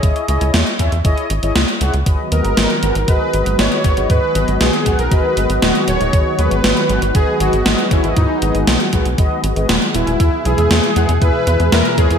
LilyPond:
<<
  \new Staff \with { instrumentName = "Supersaw synth" } { \time 4/4 \key gis \minor \tempo 4 = 118 r1 | r8 ais'4. b'4 cis''4 | b'4 gis'8. ais'16 b'4 fis'8 cis''8~ | cis''8 b'4. gis'8 fis'4 e'8 |
dis'4 r2 r8 e'8~ | e'8 gis'4. b'4 ais'8 gis'8 | }
  \new Staff \with { instrumentName = "Analog polysynth" } { \time 4/4 \key gis \minor <e' gis' cis'' dis''>8 <e' gis' cis'' dis''>8 <e' gis' cis'' dis''>16 r16 <e' gis' cis'' e''>16 r16 <e' gis' cis'' dis''>8 r16 <e' gis' cis'' dis''>16 <e' gis' cis'' dis''>16 r16 <e' gis' cis'' fis''>16 r16 | <fis' gis' b' dis''>8 <fis' gis' b' dis''>8 <fis' gis' b' dis''>16 r16 <fis' gis' b' fis''>16 r16 <fis' gis' b' dis''>8 <fis' gis' b' dis''>8 <fis' gis' b' dis''>8 <fis' gis' b' cis''>16 <fis' gis' b' dis''>16 | <fis' gis' b' dis''>8 <fis' gis' b' dis''>8 <fis' gis' b' dis''>16 r16 <fis' gis' b' fis''>16 r16 <fis' gis' b' dis''>8 <fis' gis' b' dis''>8 <fis' gis' b' dis''>8 <fis' gis' b' cis''>16 <fis' gis' b' dis''>16 | <fis' gis' b' dis''>8 <fis' gis' b' dis''>8 <fis' gis' b' dis''>16 r16 <fis' gis' b' fis''>16 r16 <fis' gis' b' dis''>8 <fis' gis' b' dis''>8 <fis' gis' b' dis''>8 <fis' gis' b' cis''>16 <fis' gis' b' dis''>16 |
<fis' gis' b' dis''>8 <fis' gis' b' dis''>8 <fis' gis' b' dis''>16 r16 <fis' gis' b' fis''>16 r16 <fis' gis' b' dis''>8 r16 <fis' gis' b' dis''>16 <fis' gis' b' dis''>16 r16 <fis' gis' b' gis''>16 r16 | <e' gis' b' e''>8 <e' gis' b' e''>8 <e' gis' b' e''>16 r16 <e' gis' b' fis''>16 r16 <e' gis' b' e''>8 <e' gis' b' e''>8 <e' gis' b' e''>8 <e' gis' b' cis''>16 <e' gis' b' e''>16 | }
  \new Staff \with { instrumentName = "Analog synth pad" } { \clef bass \time 4/4 \key gis \minor << { r1 | <dis fis b fis'>1~ | <dis fis b fis'>1~ | <dis fis b fis'>1~ |
<dis fis b fis'>1 | <b, e e' gis'>1 | } \\ { r1 | gis1~ | gis1~ | gis1~ |
gis1~ | gis1 | } >> }
  \new Staff \with { instrumentName = "Analog synth bass" } { \clef bass \time 4/4 \key gis \minor gis,,16 r16 cis,16 cis,16 e,16 r16 e,16 e,16 gis,,16 r16 gis,,16 gis,,16 cis,16 r16 cis,16 cis,16 | gis,,16 r16 dis,16 gis,,16 gis,,16 r16 gis,,16 gis,,16 gis,,16 r16 gis,,16 gis,,16 gis,,16 r16 gis,,16 gis,,16 | gis,16 r16 gis,,16 gis,,16 b,,16 r16 b,,16 b,,16 gis,,16 r16 gis,,16 gis,,16 dis,,16 r16 dis,,16 dis,,16 | gis,,16 r16 dis,16 gis,,16 gis,,16 r16 gis,,16 gis,,16 gis,,16 r16 gis,,16 gis,,16 gis,,16 r16 gis,,16 gis,,16 |
gis,16 r16 gis,,16 gis,,16 b,,16 r16 b,,16 b,,16 gis,,16 r16 gis,,16 gis,,16 dis,,16 r16 dis,,16 dis,,16 | e,16 r16 b,,16 e,16 e,16 r16 e,16 e,16 e,16 r16 e,16 e,16 e,16 r16 e,16 e,16 | }
  \new DrumStaff \with { instrumentName = "Drums" } \drummode { \time 4/4 <hh bd>16 hh16 hh16 hh16 <hh sn>16 hh16 <hh bd>16 hh16 <hh bd>16 hh16 hh16 hh16 <hh sn>16 hh16 hh16 hh16 | <hh bd>8 hh16 hh16 <hh sn>16 hh16 hh16 hh16 <hh bd>8 hh16 hh16 <hh sn>16 hh16 <hh bd>16 hh16 | <hh bd>8 hh16 hh16 <hh sn>16 hh16 <hh bd>16 hh16 <hh bd>8 hh16 hh16 <hh sn>16 hh16 hh16 hh16 | <hh bd>8 hh16 hh16 <hh sn>16 hh16 hh16 hh16 <hh bd>8 hh16 hh16 <hh sn>16 hh16 <hh bd>16 hh16 |
<hh bd>8 hh16 hh16 <hh sn>16 hh16 <hh bd>16 hh16 <hh bd>8 hh16 hh16 <hh sn>16 hh16 hh16 hh16 | <hh bd>8 hh16 hh16 <hh sn>16 hh16 hh16 hh16 <hh bd>8 hh16 hh16 <hh sn>16 hh16 <hh bd>16 hh16 | }
>>